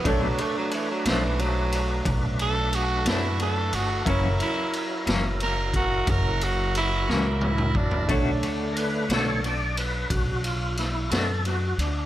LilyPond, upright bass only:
\new Staff \with { instrumentName = "Upright bass" } { \clef bass \time 12/8 \key b \minor \tempo 4. = 60 b,,8 r4 b,,4. b,,4. fis,4 g,,8 | fis,,8 r4 fis,,4. fis,,4. cis,4 fis,,8 | b,,8 r4 b,,4. b,,4. fis,4 d,8 | }